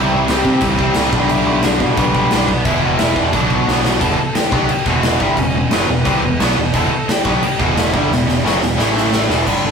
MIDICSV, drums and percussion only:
0, 0, Header, 1, 2, 480
1, 0, Start_track
1, 0, Tempo, 340329
1, 1829, Time_signature, 4, 2, 24, 8
1, 13695, End_track
2, 0, Start_track
2, 0, Title_t, "Drums"
2, 394, Note_on_c, 9, 49, 68
2, 400, Note_on_c, 9, 38, 125
2, 536, Note_off_c, 9, 49, 0
2, 541, Note_off_c, 9, 38, 0
2, 632, Note_on_c, 9, 36, 89
2, 773, Note_off_c, 9, 36, 0
2, 854, Note_on_c, 9, 49, 77
2, 870, Note_on_c, 9, 36, 126
2, 995, Note_off_c, 9, 49, 0
2, 1011, Note_off_c, 9, 36, 0
2, 1109, Note_on_c, 9, 36, 90
2, 1250, Note_off_c, 9, 36, 0
2, 1329, Note_on_c, 9, 49, 74
2, 1335, Note_on_c, 9, 38, 118
2, 1470, Note_off_c, 9, 49, 0
2, 1476, Note_off_c, 9, 38, 0
2, 1590, Note_on_c, 9, 36, 109
2, 1731, Note_off_c, 9, 36, 0
2, 1822, Note_on_c, 9, 49, 69
2, 1963, Note_off_c, 9, 49, 0
2, 2292, Note_on_c, 9, 49, 68
2, 2298, Note_on_c, 9, 38, 124
2, 2433, Note_off_c, 9, 49, 0
2, 2439, Note_off_c, 9, 38, 0
2, 2543, Note_on_c, 9, 36, 89
2, 2684, Note_off_c, 9, 36, 0
2, 2778, Note_on_c, 9, 49, 70
2, 2785, Note_on_c, 9, 36, 125
2, 2920, Note_off_c, 9, 49, 0
2, 2926, Note_off_c, 9, 36, 0
2, 3026, Note_on_c, 9, 36, 90
2, 3167, Note_off_c, 9, 36, 0
2, 3253, Note_on_c, 9, 49, 69
2, 3259, Note_on_c, 9, 38, 124
2, 3394, Note_off_c, 9, 49, 0
2, 3400, Note_off_c, 9, 38, 0
2, 3505, Note_on_c, 9, 36, 90
2, 3646, Note_off_c, 9, 36, 0
2, 3737, Note_on_c, 9, 49, 67
2, 3743, Note_on_c, 9, 36, 117
2, 3878, Note_off_c, 9, 49, 0
2, 3884, Note_off_c, 9, 36, 0
2, 4212, Note_on_c, 9, 49, 70
2, 4218, Note_on_c, 9, 38, 124
2, 4353, Note_off_c, 9, 49, 0
2, 4359, Note_off_c, 9, 38, 0
2, 4458, Note_on_c, 9, 36, 88
2, 4599, Note_off_c, 9, 36, 0
2, 4696, Note_on_c, 9, 49, 70
2, 4699, Note_on_c, 9, 36, 119
2, 4837, Note_off_c, 9, 49, 0
2, 4840, Note_off_c, 9, 36, 0
2, 4943, Note_on_c, 9, 36, 82
2, 5084, Note_off_c, 9, 36, 0
2, 5196, Note_on_c, 9, 38, 71
2, 5337, Note_off_c, 9, 38, 0
2, 5425, Note_on_c, 9, 38, 97
2, 5566, Note_off_c, 9, 38, 0
2, 5658, Note_on_c, 9, 36, 108
2, 5660, Note_on_c, 9, 49, 63
2, 5799, Note_off_c, 9, 36, 0
2, 5801, Note_off_c, 9, 49, 0
2, 6135, Note_on_c, 9, 49, 69
2, 6141, Note_on_c, 9, 38, 124
2, 6276, Note_off_c, 9, 49, 0
2, 6282, Note_off_c, 9, 38, 0
2, 6377, Note_on_c, 9, 36, 109
2, 6518, Note_off_c, 9, 36, 0
2, 6610, Note_on_c, 9, 49, 69
2, 6751, Note_off_c, 9, 49, 0
2, 6854, Note_on_c, 9, 36, 101
2, 6995, Note_off_c, 9, 36, 0
2, 7095, Note_on_c, 9, 49, 64
2, 7100, Note_on_c, 9, 38, 127
2, 7236, Note_off_c, 9, 49, 0
2, 7241, Note_off_c, 9, 38, 0
2, 7336, Note_on_c, 9, 36, 112
2, 7477, Note_off_c, 9, 36, 0
2, 7575, Note_on_c, 9, 36, 102
2, 7584, Note_on_c, 9, 49, 62
2, 7716, Note_off_c, 9, 36, 0
2, 7725, Note_off_c, 9, 49, 0
2, 8052, Note_on_c, 9, 49, 64
2, 8057, Note_on_c, 9, 38, 118
2, 8193, Note_off_c, 9, 49, 0
2, 8198, Note_off_c, 9, 38, 0
2, 8537, Note_on_c, 9, 36, 120
2, 8550, Note_on_c, 9, 49, 75
2, 8678, Note_off_c, 9, 36, 0
2, 8691, Note_off_c, 9, 49, 0
2, 9028, Note_on_c, 9, 49, 73
2, 9033, Note_on_c, 9, 38, 123
2, 9169, Note_off_c, 9, 49, 0
2, 9175, Note_off_c, 9, 38, 0
2, 9500, Note_on_c, 9, 49, 70
2, 9502, Note_on_c, 9, 36, 110
2, 9641, Note_off_c, 9, 49, 0
2, 9643, Note_off_c, 9, 36, 0
2, 9997, Note_on_c, 9, 49, 73
2, 10003, Note_on_c, 9, 38, 125
2, 10138, Note_off_c, 9, 49, 0
2, 10144, Note_off_c, 9, 38, 0
2, 10226, Note_on_c, 9, 36, 112
2, 10367, Note_off_c, 9, 36, 0
2, 10473, Note_on_c, 9, 49, 70
2, 10614, Note_off_c, 9, 49, 0
2, 10712, Note_on_c, 9, 36, 109
2, 10853, Note_off_c, 9, 36, 0
2, 10962, Note_on_c, 9, 49, 66
2, 10967, Note_on_c, 9, 38, 123
2, 11103, Note_off_c, 9, 49, 0
2, 11108, Note_off_c, 9, 38, 0
2, 11193, Note_on_c, 9, 36, 114
2, 11334, Note_off_c, 9, 36, 0
2, 11453, Note_on_c, 9, 38, 70
2, 11594, Note_off_c, 9, 38, 0
2, 11682, Note_on_c, 9, 38, 62
2, 11823, Note_off_c, 9, 38, 0
2, 11934, Note_on_c, 9, 38, 86
2, 12075, Note_off_c, 9, 38, 0
2, 12162, Note_on_c, 9, 38, 70
2, 12303, Note_off_c, 9, 38, 0
2, 12403, Note_on_c, 9, 38, 100
2, 12544, Note_off_c, 9, 38, 0
2, 12652, Note_on_c, 9, 38, 81
2, 12793, Note_off_c, 9, 38, 0
2, 12873, Note_on_c, 9, 38, 109
2, 13014, Note_off_c, 9, 38, 0
2, 13119, Note_on_c, 9, 38, 94
2, 13260, Note_off_c, 9, 38, 0
2, 13351, Note_on_c, 9, 36, 105
2, 13356, Note_on_c, 9, 57, 114
2, 13492, Note_off_c, 9, 36, 0
2, 13497, Note_off_c, 9, 57, 0
2, 13695, End_track
0, 0, End_of_file